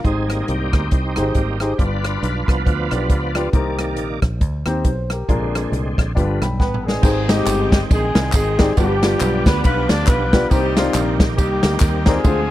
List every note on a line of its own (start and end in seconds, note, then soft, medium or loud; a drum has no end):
0.04 0.42 G#1 medium
0.04 0.70 G#2 soft
0.04 0.28 C4 medium
0.04 0.53 D#4 medium
0.04 0.46 D#4 medium
0.04 0.53 G4 medium
0.04 0.53 G#4 soft
0.04 0.50 G#4 medium
0.04 0.54 C5 medium
0.04 kick medium
0.04 closed hi-hat medium
0.28 0.88 G3 soft
0.28 0.88 A#3 soft
0.28 0.47 C4 soft
0.28 cross-stick medium
0.28 closed hi-hat medium
0.47 0.70 C2 medium
0.47 1.34 C4 medium
0.47 1.75 D#4 medium
0.47 1.84 G4 medium
0.47 closed hi-hat medium
0.73 0.89 D2 medium
0.73 kick medium
0.73 cross-stick medium
0.73 closed hi-hat medium
0.91 1.20 C2 medium
0.91 kick medium
0.91 closed hi-hat medium
1.16 1.33 G#1 medium
1.16 1.38 D#4 medium
1.16 1.38 G4 medium
1.16 1.38 G#4 medium
1.16 1.38 C5 medium
1.16 cross-stick medium
1.16 closed hi-hat medium
1.35 1.72 G#1 medium
1.35 1.58 G3 soft
1.35 1.59 A#3 soft
1.35 1.59 C4 soft
1.35 kick medium
1.35 closed hi-hat medium
1.60 1.71 D#4 medium
1.60 1.71 G4 medium
1.60 1.71 G#4 medium
1.60 1.72 C5 medium
1.60 cross-stick medium
1.60 closed hi-hat soft
1.78 2.16 G1 medium
1.78 2.45 G2 soft
1.78 2.27 D4 medium
1.78 2.47 D4 medium
1.78 2.28 F4 soft
1.78 2.63 F4 medium
1.78 2.28 G4 medium
1.78 2.62 B4 medium
1.78 2.28 B4 medium
1.78 kick medium
1.78 closed hi-hat medium
2.04 cross-stick loud
2.04 closed hi-hat medium
2.23 2.45 B1 medium
2.23 closed hi-hat medium
2.46 2.63 C2 medium
2.46 3.49 F3 soft
2.46 3.49 B3 soft
2.46 2.65 D4 medium
2.46 kick medium
2.46 cross-stick medium
2.46 closed hi-hat medium
2.65 2.89 D2 medium
2.65 3.50 D4 medium
2.65 3.50 F4 medium
2.65 3.31 B4 medium
2.65 kick medium
2.65 closed hi-hat medium
2.91 3.10 B1 medium
2.91 3.13 D4 medium
2.91 3.13 F4 medium
2.91 3.13 G4 soft
2.91 3.13 B4 medium
2.91 cross-stick medium
2.91 closed hi-hat medium
3.10 3.47 C#2 medium
3.10 kick medium
3.10 closed hi-hat medium
3.35 3.45 D4 medium
3.35 3.46 F4 medium
3.35 3.46 G4 medium
3.35 3.46 B4 medium
3.35 cross-stick loud
3.35 closed hi-hat medium
3.53 3.97 C2 medium
3.53 4.19 C3 medium
3.53 4.20 D#3 medium
3.53 4.20 A#3 soft
3.53 4.02 C4 medium
3.53 4.03 D#4 medium
3.53 4.03 G4 medium
3.53 4.03 A#4 medium
3.53 4.20 D5 medium
3.53 kick medium
3.53 closed hi-hat medium
3.79 cross-stick medium
3.79 closed hi-hat medium
3.97 4.19 A#1 medium
3.97 closed hi-hat medium
4.22 4.41 A#1 medium
4.22 kick medium
4.22 cross-stick medium
4.22 closed hi-hat medium
4.41 4.63 D2 medium
4.41 kick medium
4.41 closed hi-hat medium
4.66 4.82 D#2 medium
4.66 4.87 C4 medium
4.66 4.88 D#4 medium
4.66 4.85 G4 medium
4.66 4.83 C5 medium
4.66 cross-stick medium
4.66 closed hi-hat medium
4.85 5.22 B1 medium
4.85 5.10 C5 medium
4.85 kick medium
4.85 closed hi-hat medium
5.10 5.53 G4 soft
5.10 5.29 A#4 soft
5.10 cross-stick medium
5.10 closed hi-hat soft
5.28 5.66 A#1 medium
5.28 5.95 A#2 medium
5.28 6.12 D3 soft
5.28 6.12 G#3 soft
5.28 6.13 C4 medium
5.28 5.78 D4 medium
5.28 5.78 F4 medium
5.28 5.78 G#4 medium
5.28 5.79 A#4 medium
5.28 kick medium
5.28 closed hi-hat medium
5.55 cross-stick medium
5.55 closed hi-hat medium
5.72 5.94 C2 medium
5.72 closed hi-hat medium
5.98 6.18 A#1 medium
5.98 kick medium
5.98 cross-stick medium
5.98 closed hi-hat soft
6.15 6.38 G1 medium
6.15 6.81 G2 medium
6.15 6.47 D3 soft
6.15 6.48 F3 soft
6.15 6.48 B3 medium
6.15 6.36 D4 medium
6.15 6.37 F4 medium
6.15 6.37 G4 medium
6.15 6.37 B4 medium
6.15 kick medium
6.15 closed hi-hat medium
6.42 6.60 B1 medium
6.42 6.58 G5 soft
6.42 6.59 B5 medium
6.42 cross-stick medium
6.42 closed hi-hat medium
6.60 6.97 A1 medium
6.60 6.84 B3 medium
6.60 6.84 B4 medium
6.60 6.84 G5 medium
6.60 kick medium
6.60 snare soft
6.74 mid tom medium
6.85 7.29 G#3 medium
6.85 7.29 C4 medium
6.85 7.29 D#4 medium
6.85 7.29 G#4 medium
6.85 7.28 B4 soft
6.85 7.27 D5 medium
6.85 snare medium
7.02 7.40 G#1 loud
7.02 7.69 G#2 medium
7.02 8.73 D#3 medium
7.02 8.73 G#3 medium
7.02 8.73 C4 medium
7.02 7.18 C4 medium
7.02 7.18 D#4 medium
7.02 7.18 G4 medium
7.02 7.18 G#4 medium
7.02 7.18 C5 medium
7.02 8.73 G5 medium
7.02 kick medium
7.02 crash medium
7.02 tambourine medium
7.28 7.73 G3 medium
7.28 7.76 G#3 medium
7.28 7.76 C4 medium
7.28 7.92 C4 medium
7.28 7.76 D#4 medium
7.28 7.91 D#4 medium
7.28 7.76 G4 medium
7.28 7.73 G4 loud
7.28 7.76 D#5 medium
7.28 snare loud
7.28 ride medium
7.28 tambourine medium
7.46 7.84 G1 loud
7.46 clap loud
7.46 ride medium
7.46 tambourine loud
7.72 7.82 G3 medium
7.72 7.82 G4 medium
7.72 kick medium
7.72 snare loud
7.72 ride medium
7.72 tambourine medium
7.91 8.12 A#1 loud
7.91 8.32 G#3 medium
7.91 8.35 C4 medium
7.91 8.35 D#4 medium
7.91 8.32 G#4 medium
7.91 kick loud
7.91 ride medium
7.91 tambourine medium
8.15 8.31 C2 loud
8.15 snare loud
8.15 ride medium
8.15 tambourine medium
8.32 8.71 G#1 medium
8.32 8.75 G#3 medium
8.32 8.75 C4 medium
8.32 8.75 G#4 medium
8.32 kick medium
8.32 clap loud
8.32 ride medium
8.32 tambourine loud
8.36 8.76 D#4 medium
8.59 8.69 C4 medium
8.59 8.69 D#4 medium
8.59 8.69 G4 medium
8.59 8.70 G#4 medium
8.59 8.70 D5 medium
8.59 kick medium
8.59 snare loud
8.59 ride medium
8.59 tambourine soft
8.76 9.14 G1 loud
8.76 9.43 G2 medium
8.76 10.47 F3 medium
8.76 10.47 G3 medium
8.76 9.43 G3 medium
8.76 10.47 B3 medium
8.76 8.92 B3 medium
8.76 9.47 B3 medium
8.76 10.47 D4 medium
8.76 8.92 D4 medium
8.76 9.61 D4 medium
8.76 8.92 F4 medium
8.76 10.47 G4 medium
8.76 8.92 G4 medium
8.76 9.43 G4 loud
8.76 8.92 B4 medium
8.76 kick medium
8.76 ride medium
8.76 tambourine medium
9.02 9.50 B3 medium
9.02 9.50 D4 medium
9.02 9.50 F4 medium
9.02 9.50 G4 medium
9.02 9.50 D5 medium
9.02 snare loud
9.02 ride medium
9.02 tambourine medium
9.20 9.43 B1 loud
9.20 clap loud
9.20 ride medium
9.20 tambourine loud
9.46 9.61 D2 loud
9.46 9.64 B3 loud
9.46 9.64 B4 loud
9.46 kick loud
9.46 snare loud
9.46 ride medium
9.46 tambourine medium
9.64 9.86 B1 medium
9.64 9.88 B3 loud
9.64 9.89 D4 medium
9.64 10.06 F4 medium
9.64 9.88 B4 loud
9.64 kick loud
9.64 ride medium
9.64 tambourine medium
9.89 10.05 D2 loud
9.89 10.07 D4 loud
9.89 10.07 D5 loud
9.89 snare loud
9.89 ride medium
9.89 tambourine medium
10.07 10.44 B1 loud
10.07 10.51 B3 medium
10.07 10.48 D4 medium
10.07 10.48 F4 medium
10.07 10.51 B4 loud
10.07 kick loud
10.07 clap loud
10.07 ride medium
10.07 tambourine loud
10.33 10.43 B3 medium
10.33 10.43 D4 medium
10.33 10.43 F4 medium
10.33 10.43 G4 medium
10.33 10.43 D5 medium
10.33 kick medium
10.33 snare loud
10.33 ride medium
10.33 tambourine soft
10.50 10.88 C2 loud
10.50 11.16 C3 medium
10.50 12.21 D#3 medium
10.50 10.76 G3 loud
10.50 12.21 G3 medium
10.50 10.75 A#3 medium
10.50 12.22 A#3 medium
10.50 10.65 C4 medium
10.50 12.21 C4 medium
10.50 11.33 D#4 medium
10.50 10.65 D#4 medium
10.50 10.57 F#4 medium
10.50 10.76 G4 loud
10.50 10.65 G4 medium
10.50 10.65 A#4 medium
10.50 10.66 C5 medium
10.50 kick medium
10.50 ride medium
10.50 tambourine medium
10.57 12.24 G4 medium
10.76 11.17 F3 medium
10.76 11.37 A#3 medium
10.76 11.23 C4 medium
10.76 10.81 D4 medium
10.76 11.17 F4 medium
10.76 11.24 G4 medium
10.76 11.24 A#4 medium
10.76 11.24 D5 medium
10.76 snare loud
10.76 ride medium
10.76 tambourine medium
10.82 11.26 D#4 medium
10.94 11.38 A#1 loud
10.94 clap loud
10.94 ride medium
10.94 tambourine loud
11.20 kick loud
11.20 snare loud
11.20 ride medium
11.20 tambourine medium
11.38 11.60 C2 loud
11.38 11.78 G3 medium
11.38 12.21 A#3 medium
11.38 12.21 D#4 medium
11.38 11.78 G4 medium
11.38 kick loud
11.38 ride medium
11.38 tambourine medium
11.63 11.79 D2 medium
11.63 snare loud
11.63 ride medium
11.63 tambourine medium
11.80 12.18 D#2 loud
11.80 12.05 G3 medium
11.80 12.05 G4 medium
11.80 kick loud
11.80 clap loud
11.80 ride medium
11.80 tambourine loud
12.06 12.51 G#3 loud
12.06 12.16 C4 medium
12.06 12.51 C4 medium
12.06 12.16 D#4 medium
12.06 12.51 F4 medium
12.06 12.17 G4 medium
12.06 12.51 G#4 loud
12.06 12.17 A#4 medium
12.06 12.17 D5 medium
12.06 kick medium
12.06 snare loud
12.06 ride soft
12.06 tambourine soft
12.24 12.51 D2 loud
12.24 12.51 D3 medium
12.24 12.51 F3 medium
12.24 12.51 G#3 medium
12.24 12.38 C4 medium
12.24 12.51 C4 medium
12.24 12.38 D4 medium
12.24 12.51 D4 medium
12.24 12.39 F4 medium
12.24 12.51 G#4 medium
12.24 12.39 G#4 medium
12.24 12.39 C5 medium
12.24 kick medium
12.24 ride medium
12.24 tambourine medium